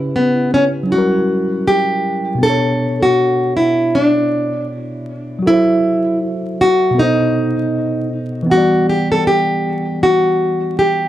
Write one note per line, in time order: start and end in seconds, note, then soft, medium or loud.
0.00 0.83 C#3 medium
0.00 0.85 C#4 medium
0.00 0.87 E4 medium
0.00 0.89 G4 medium
0.00 0.91 B4 medium
0.16 0.54 B3 medium
0.54 0.64 C#4 medium
0.83 2.35 F#3 medium
0.83 2.37 C#4 medium
0.91 2.41 G3 medium
0.91 2.39 E4 medium
0.91 2.01 F#4 medium
0.98 2.43 A#4 medium
1.68 2.43 G4 medium
2.35 5.38 B2 medium
2.35 5.40 B3 medium
2.42 5.42 D4 medium
2.42 2.98 A4 loud
2.42 5.43 A4 medium
2.50 5.45 C#5 medium
3.03 3.56 F#4 loud
3.57 3.95 E4 medium
3.95 4.66 D4 medium
5.39 6.91 F#3 medium
5.39 6.93 F#4 medium
5.46 6.18 E4 loud
5.46 6.95 A4 medium
5.46 6.97 C5 medium
5.54 6.98 E5 medium
6.61 6.99 F#4 loud
6.91 8.43 B2 medium
6.91 8.45 B3 medium
6.98 8.08 D#4 loud
6.98 8.47 A4 medium
6.98 8.48 C5 medium
7.05 8.50 D#5 medium
8.43 11.09 E3 medium
8.43 11.09 B3 medium
8.50 11.09 G3 medium
8.50 8.89 F#4 medium
8.50 11.09 F#5 medium
8.57 11.09 D5 medium
8.89 9.11 G4 medium
9.12 9.27 A4 medium
9.27 10.03 G4 medium
10.03 10.78 F#4 medium
10.79 11.09 G4 medium